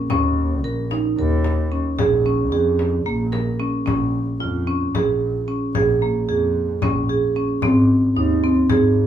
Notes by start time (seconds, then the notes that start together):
0.10 D#2 C#4, frame drum
0.64 A#1 A#4
0.91 D#4, frame drum
1.18 D#2 A#4
1.44 frame drum
1.72 C#4
1.98 A#1 G#4, frame drum
2.26 C#4
2.52 F2 G#4
2.79 frame drum
3.05 A#1 A#3, frame drum
3.32 A#4, frame drum
3.60 C#4
3.86 A#1 C#4, frame drum
4.40 F2 F4
4.67 C#4, frame drum
4.93 A#1 G#4, frame drum
5.48 C#4
5.74 A#1 G#4, frame drum
6.02 A#3
6.28 F2 G#4
6.55 frame drum
6.82 A#1 C#4, frame drum
7.09 G#4
7.36 C#4
7.62 G#1 C4, frame drum
8.16 D#2 D#4
8.43 C4, frame drum
8.69 G#1 G#4, frame drum